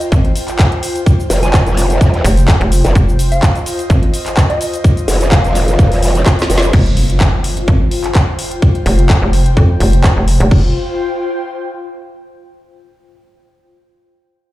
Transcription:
Already playing: analog synth pad F4 C5 G5
0.01 closed hi-hat, shaker
0.12 fm bass G#1, kick, closed hi-hat, shaker
0.25 closed hi-hat
0.36 open hi-hat, shaker
0.48 clap, closed hi-hat, shaker
0.59 kick, clap, closed hi-hat, shaker
0.72 closed hi-hat
0.83 open hi-hat, shaker
0.96 closed hi-hat, shaker
1.06 kick, closed hi-hat, shaker
1.20 shaker
1.30 wobble bass F1, open hi-hat, shaker
1.43 synth bell G#5, closed hi-hat, shaker
1.54 synth bell G#5, kick, clap, closed hi-hat, shaker
1.66 wobble bass F1, closed hi-hat, shaker
1.77 open hi-hat, shaker
1.90 closed hi-hat, shaker
2.01 wobble bass F2, kick, closed hi-hat, shaker
2.14 closed hi-hat
2.24 fm bass F1, open hi-hat, shaker
2.37 closed hi-hat, shaker
2.48 kick, clap, closed hi-hat, shaker
2.61 fm bass F1, closed hi-hat
2.72 open hi-hat, shaker
2.85 wobble bass F1, closed hi-hat, shaker
2.95 fm bass F1, kick, closed hi-hat, shaker
3.09 shaker
3.18 analog synth pad D#5, open hi-hat, shaker
3.32 synth bell F5, closed hi-hat, shaker
3.43 kick, clap, closed hi-hat, shaker
3.55 closed hi-hat, shaker
3.66 open hi-hat, shaker
3.79 closed hi-hat, shaker
3.90 fm bass G#1, kick, closed hi-hat, shaker
4.03 closed hi-hat
4.14 open hi-hat, shaker
4.26 clap, closed hi-hat, shaker
4.37 kick, clap, closed hi-hat, shaker
4.50 synth bell D#5, closed hi-hat
4.61 open hi-hat, shaker
4.74 closed hi-hat, shaker
4.84 kick, closed hi-hat, shaker
4.97 closed hi-hat, shaker
5.08 wobble bass F1, open hi-hat, shaker
5.21 closed hi-hat, shaker
5.32 synth bell F5, kick, clap, closed hi-hat, shaker
5.44 wobble bass F1, closed hi-hat, shaker
5.55 open hi-hat, shaker
5.68 closed hi-hat, shaker
5.79 wobble bass F1, kick, closed hi-hat, shaker
5.92 open hi-hat, shaker
6.03 open hi-hat, shaker
6.15 closed hi-hat, shaker
6.26 kick, snare, clap, closed hi-hat, shaker
6.39 snare, closed hi-hat, shaker
6.50 wobble bass F1, open hi-hat, shaker
6.58 snare
6.62 closed hi-hat, shaker
6.73 fm bass F1, analog synth pad F4, kick, closed hi-hat, crash, impact
6.86 closed hi-hat
6.97 open hi-hat
7.10 closed hi-hat
7.20 kick, clap, closed hi-hat
7.25 analog synth pad C5
7.44 open hi-hat
7.56 analog synth pad G5, closed hi-hat
7.68 fm bass G#1, kick, closed hi-hat
7.91 open hi-hat
8.04 clap, closed hi-hat
8.15 kick, clap, closed hi-hat
8.39 open hi-hat
8.51 closed hi-hat
8.62 kick, closed hi-hat
8.75 closed hi-hat
8.86 fm bass F1, open hi-hat
8.99 closed hi-hat
9.09 kick, clap, closed hi-hat
9.22 fm bass F1
9.33 open hi-hat
9.46 closed hi-hat
9.57 fm bass F2, kick, closed hi-hat
9.80 fm bass F1, open hi-hat
9.93 closed hi-hat
10.04 kick, clap, closed hi-hat
10.17 fm bass F1
10.28 open hi-hat
10.40 fm bass F1, closed hi-hat
10.51 fm bass F1, analog synth pad F4, kick, crash
10.59 analog synth pad C5
10.66 analog synth pad G5

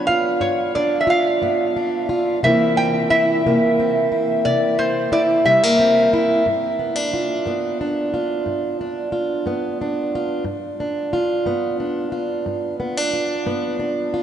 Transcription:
Already playing: steel-string acoustic guitar B3 D4
0.07 steel-string acoustic guitar F4, resonator guitar played with a steel bar F5
0.41 steel-string acoustic guitar G2, resonator guitar played with a steel bar C#5
0.75 steel-string acoustic guitar D4, resonator guitar played with a steel bar D5
1.01 resonator guitar played with a steel bar E5
1.07 steel-string acoustic guitar F4, resonator guitar played with a steel bar F5
1.42 steel-string acoustic guitar G2 B3
1.76 steel-string acoustic guitar D4
2.09 steel-string acoustic guitar F4
2.43 steel-string acoustic guitar C3 E3 A#3 C4 E4, resonator guitar played with a steel bar E5
2.77 steel-string acoustic guitar C4, resonator guitar played with a steel bar G5
3.10 steel-string acoustic guitar E4, resonator guitar played with a steel bar E5
3.46 steel-string acoustic guitar C3 A#3
3.79 steel-string acoustic guitar C4
4.12 steel-string acoustic guitar E4
4.45 steel-string acoustic guitar C3, resonator guitar played with a steel bar D5
4.79 steel-string acoustic guitar C4, resonator guitar played with a steel bar C5
5.12 steel-string acoustic guitar E4, resonator guitar played with a steel bar D5
5.45 steel-string acoustic guitar C3 G3, resonator guitar played with a steel bar E5
5.63 steel-string acoustic guitar A#3
5.79 steel-string acoustic guitar C4
6.13 steel-string acoustic guitar E4
6.46 steel-string acoustic guitar G2
6.79 steel-string acoustic guitar B3
6.96 steel-string acoustic guitar D4
7.14 steel-string acoustic guitar F4
7.46 steel-string acoustic guitar G2 B3
7.81 steel-string acoustic guitar D4
8.14 steel-string acoustic guitar F4
8.46 steel-string acoustic guitar G2
8.81 steel-string acoustic guitar D4
9.12 steel-string acoustic guitar F4
9.46 steel-string acoustic guitar G2 B3
9.81 steel-string acoustic guitar D4
10.15 steel-string acoustic guitar F4
10.44 steel-string acoustic guitar G2
10.80 steel-string acoustic guitar D4
11.13 steel-string acoustic guitar F4
11.46 steel-string acoustic guitar G2 B3
11.80 steel-string acoustic guitar D4
12.12 steel-string acoustic guitar F4
12.46 steel-string acoustic guitar G2
12.80 steel-string acoustic guitar B3
12.97 steel-string acoustic guitar D4
13.13 steel-string acoustic guitar F4
13.46 steel-string acoustic guitar G2 B3
13.79 steel-string acoustic guitar D4
14.14 steel-string acoustic guitar F4

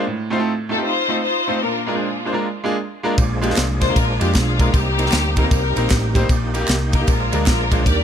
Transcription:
0.07 grand piano A2
0.30 grand piano A3 C4 D#4 F4 C5
0.38 grand piano A3 C4 D#4 F4 A4
0.69 grand piano A3 C4 D#4 F4 A4, string section A4
0.76 grand piano A3 C4 D#4 F4 G4
0.85 string section D#4 F4 C5
1.08 grand piano A3 C4 D#4 F4 D#5
1.23 string section D#4 F4 C5
1.48 grand piano A3 C4 D#4 F4 C5
1.63 grand piano A#2, string section D4 F4 A#4
1.87 grand piano G#3 A#3 D4 F4 A#4, string section D4 F4 G#4
1.93 grand piano G#3 A#3 D4 F4 C5
2.25 grand piano G#3 A#3 D4 F4 C5
2.33 grand piano G#3 A#3 D4 F4 A#4
2.64 grand piano G#3 A#3 D4 F4 G#4
3.03 grand piano G#3 A#3 D4 F4 A#4
3.18 fingered electric bass A#1, grand piano A#2, tonewheel organ F3 G#3 A#3 D4 G4, kick, ride, tambourine
3.23 tonewheel organ G#4
3.41 grand piano G#3 A#3 D4 F4 G4, ride, tambourine
3.49 grand piano G#3 A#3 D4 F4 C5, snare
3.56 fingered electric bass C2, snare, clap, ride, tambourine
3.80 grand piano G#3 A#3 D4 F4 C5, string section C5, kick, snare, ride, tambourine
3.88 grand piano G#3 A#3 D4 F4 A#4
3.96 fingered electric bass A#1, string section D4 F4 A#4, kick, ride, tambourine
4.20 fingered electric bass F2, grand piano G#3 A#3 D4 F4 G4, string section G4, ride, tambourine
4.35 fingered electric bass B1, string section G#3 D4 F4, kick, snare, clap, ride, tambourine
4.59 grand piano G#3 A#3 D4 F4 A#4, kick, ride, tambourine
4.74 fingered electric bass C2, grand piano C3, tonewheel organ G3 A#3 C4 D#4 G4, string section A#3 D#4 G4, kick, ride, tambourine
4.97 grand piano G3 A#3 C4 D#4 A#4, ride, tambourine
5.05 grand piano G3 A#3 C4 D#4 A#4, snare
5.12 fingered electric bass D2, snare, clap, ride, tambourine
5.36 grand piano G3 A#3 C4 D#4 A#4, string section A#4, kick, ride, tambourine
5.43 grand piano G3 A#3 C4 D#4 A#4
5.51 fingered electric bass C2, string section D#4 G4 A#4, kick, ride, tambourine
5.76 fingered electric bass A#1, grand piano G3 A#3 C4 D#4 A#4, ride, tambourine
5.90 fingered electric bass A1, kick, snare, clap, ride, tambourine
6.15 grand piano G3 A#3 C4 D#4 C5, kick, ride, tambourine
6.29 fingered electric bass A#1, grand piano A#2, tonewheel organ A#3 D#4 G4, kick, ride, tambourine
6.54 grand piano A#3 D#4 G4, ride, tambourine
6.61 grand piano A#3 D#4 G4
6.68 fingered electric bass C2, snare, clap, ride, tambourine
6.92 grand piano A#3 D#4 A#4, string section G4, kick, ride, tambourine
7.00 grand piano A#3 D#4 G4
7.07 fingered electric bass A#1, grand piano A#2, tonewheel organ F3 G#3 A#3 D4 G#4, string section D4 F4 A#4, kick, ride, tambourine
7.32 fingered electric bass D2, grand piano G#3 A#3 D4 F4 A#4, ride, tambourine
7.45 fingered electric bass A#1, string section D4 F4 A#4, kick, snare, clap, ride, tambourine
7.71 grand piano G#3 A#3 D4 F4 C5, kick, ride, tambourine
7.84 fingered electric bass D#2, grand piano D#3, tonewheel organ G3 A#3 D4 G4, string section G4 A#4 D5, kick, ride, tambourine

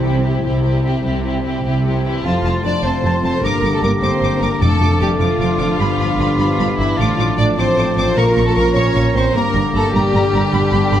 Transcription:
Already playing: double bass section C2, cello section C3, timpani C3, harp C3, french horn section C4 E4
0.03 viola section C4, harp E4, violin section E4 G4
0.23 harp G3, viola section C4, violin section E4 G4
0.44 double bass section C2, cello section C3, viola section C4, harp E4, violin section E4 G4
0.63 harp G3, viola section C4, violin section E4 G4
0.85 viola section C4, harp E4, violin section E4 G4
1.03 double bass section C2, cello section C3, harp G3, viola section C4, violin section E4 G4
1.24 viola section C4, harp E4, violin section E4 G4
1.44 harp G3, viola section C4, violin section E4 G4
1.64 double bass section C2, cello section C3, viola section C4, harp E4, violin section E4 G4
1.84 harp G3, viola section C4, violin section E4 G4
2.05 viola section E3 C4, harp E4, violin section E4 G4
2.24 double bass section F1, cello section F2, harp F2, trombone section F3 A3, viola section F3, french horn section C4 F4, clarinet F4, violin section F4 A5, oboe A5, flute C6
2.43 double bass section F1, cello section F2, harp C3, violin section A5
2.63 double bass section F1, cello section F2, viola section D4, harp F4, violin section D5 A5
2.83 double bass section F1, cello section F2, viola section C4, harp A4, violin section C5 A5
3.03 double bass section F1, cello section F2, harp C5, violin section A5
3.22 double bass section F1, cello section F2, viola section C4, harp A4, violin section C5 A5
3.41 double bass section G1, cello section G2, harp G2, trombone section D3 A#3, viola section A#3, french horn section D4 G4, clarinet D4, violin section A#4, oboe A#5, flute D6
3.45 violin section D6
3.62 double bass section G1, cello section G2, harp D3, violin section D6
3.71 viola section A3, violin section A4
3.82 double bass section G1, cello section G2, viola section A#3, harp D4, violin section A#4 D6
4.01 double bass section G1, cello section G2, viola section C4, harp A#4, violin section C5 D6
4.20 double bass section G1, cello section G2, harp D4, violin section D6
4.40 double bass section G1, cello section G2, viola section A#3, violin section A#4 D6, harp A#4
4.61 double bass section F1, cello section F2, harp F2, timpani F2, trombone section A3, viola section A3, violin section A4 D6, french horn section A4, oboe A5
4.80 double bass section F1, cello section F2, harp F3, violin section D6
5.01 double bass section F1, cello section F2, viola section G3, harp D4, violin section G4 D6
5.20 double bass section F1, cello section F2, viola section F3, violin section F4 D6, harp D5
5.40 double bass section F1, cello section F2, violin section D6
5.59 double bass section F1, cello section F2, harp D5, violin section D6
5.77 double bass section G1, cello section G2, harp G2, trombone section B3, french horn section G4, violin section B5, oboe B5
5.99 double bass section G1, cello section G2, harp D3, violin section B5
6.18 double bass section G1, cello section G2, harp D4, violin section B5
6.38 double bass section G1, cello section G2, harp D5, violin section B5
6.58 double bass section G1, cello section G2, harp B4, violin section B5
6.77 double bass section G1, cello section G2, viola section E3, violin section E4 B5
6.97 double bass section A1, harp A2, cello section A2, viola section F3, trombone section F3 A3, french horn section F4, violin section F4 D6, oboe A5
7.17 double bass section A1, cello section A2, harp F3, violin section D6
7.37 double bass section A1, cello section A2, harp D4, viola section D4, violin section D5 D6
7.57 double bass section A1, cello section A2, viola section C4, violin section C5 D6
7.77 double bass section A1, cello section A2, harp A4, violin section D6
7.96 double bass section A1, cello section A2, viola section C4, violin section C5 D6
8.15 double bass section A#1, cello section A#2, harp A#2, trombone section A#3, viola section A#3, french horn section C#4, clarinet F4, violin section A#4 C#6, oboe A#5, flute C#6
8.36 double bass section A#1, cello section A#2, harp A#3, violin section C#6
8.47 viola section A3, violin section A4
8.55 double bass section A#1, cello section A#2, viola section A#3, violin section A#4 C#6
8.74 double bass section A#1, cello section A#2, viola section C#4, harp A#4, violin section C#5 C#6
8.94 double bass section A#1, cello section A#2, harp F4, violin section C#6
9.14 double bass section A#1, cello section A#2, viola section C4, violin section C5 C#6
9.32 double bass section G1, cello section G2, harp G2, trombone section D3, viola section A#3, french horn section D4 G4, clarinet D4, violin section A#4, flute D6
9.37 violin section A#5
9.53 double bass section G1, cello section G2, harp D3, violin section A#5
9.73 double bass section G1, cello section G2, viola section A3, harp D4, violin section A4 A#5
9.93 double bass section G1, cello section G2, viola section G3, violin section G4 A#5, harp A#4
10.13 double bass section G1, cello section G2, harp G4, violin section A#5
10.33 double bass section G1, cello section G2, harp A#4, violin section A#5
10.52 double bass section G1, harp G2, cello section G2, trombone section B3, violin section B5, oboe B5
10.72 double bass section G1, cello section G2, harp D3, violin section B5
10.92 double bass section G1, cello section G2, harp D4, violin section B5

